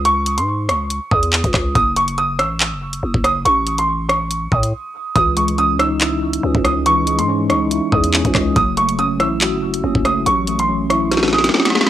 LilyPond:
<<
  \new Staff \with { instrumentName = "Grand piano" } { \time 4/4 \key cis \minor \tempo 4 = 141 cis'''8. bis''8. cis'''4 dis'''4. | dis'''8 cis'''8 dis'''8 e'''2 dis'''8 | cis'''8. bis''8. cis'''4 dis'''4. | dis'''8 cis'''8 dis'''8 e'''2 dis'''8 |
cis'''8. bis''8. cis'''4 dis'''4. | dis'''8 cis'''8 dis'''8 e'''2 dis'''8 | cis'''8. bis''8. cis'''4 dis'''4. | }
  \new Staff \with { instrumentName = "Tine electric piano" } { \time 4/4 \key cis \minor r1 | r1 | r1 | e8 gis8 cis'8 dis'8 e'4 cis'8 gis8 |
e8 gis8 cis'8 dis'8 e'4 cis'8 gis8 | fis8 a8 cis'8 e'8 fis'4 cis'8 a8 | fis8 a8 cis'8 e'8 fis'4 cis'8 a8 | }
  \new Staff \with { instrumentName = "808-style bass" } { \clef bass \time 4/4 \key cis \minor cis,8. gis,8. cis,8. r16 e,8. cis,16 cis,8 | fis,,4. a,,8. fis,,8. fis,,16 fis,,8. | a,,2~ a,,8 a,8 r4 | cis,2. cis,16 cis,8.~ |
cis,8. gis,8. cis,8. r16 e,8. cis,16 cis,8 | fis,,4. a,,8. fis,,8. fis,,16 fis,,8. | a,,2. r4 | }
  \new DrumStaff \with { instrumentName = "Drums" } \drummode { \time 4/4 hh8 hh16 hh16 r8 <hh ss>8 hh8 bd16 hh16 hc16 <hh bd>16 <hc hh bd ss>8 | <hh bd>8 hh16 hh16 hh8 <hh ss>8 <hc hh>8. hh16 r16 bd16 <hh ss>8 | hh8 hh16 hh16 r8 <hh ss>8 hh8 bd16 hh16 r4 | <hh bd>8 hh16 hh16 hh8 <hh ss>8 <hc hh>8. hh16 r16 bd16 <hh ss>8 |
hh8 hh16 hh16 r8 <hh ss>8 hh8 bd16 hh16 hc16 <hh bd>16 <hc hh bd ss>8 | <hh bd>8 hh16 hh16 hh8 <hh ss>8 <hc hh>8. hh16 r16 bd16 <hh ss>8 | hh8 hh16 hh16 r8 <hh ss>8 <hh sn>32 sn32 sn32 sn32 sn32 sn32 <hh sn>32 sn32 sn32 sn32 <hh sn>32 sn32 sn32 sn32 sn16 | }
>>